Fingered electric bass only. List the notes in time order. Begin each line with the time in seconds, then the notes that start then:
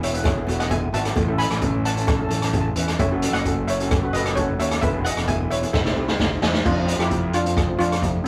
Already playing: E1
0.47 E1
0.92 G#1
1.16 A1
1.49 A1
2.30 A1
2.76 E2
2.99 F#1
3.33 F#1
4.13 F#1
4.59 D#2
4.83 E1
5.17 E1
5.74 C2
5.96 C2
6.20 D2
6.42 E2
6.66 F2
6.98 F2
7.79 F2
8.25 C2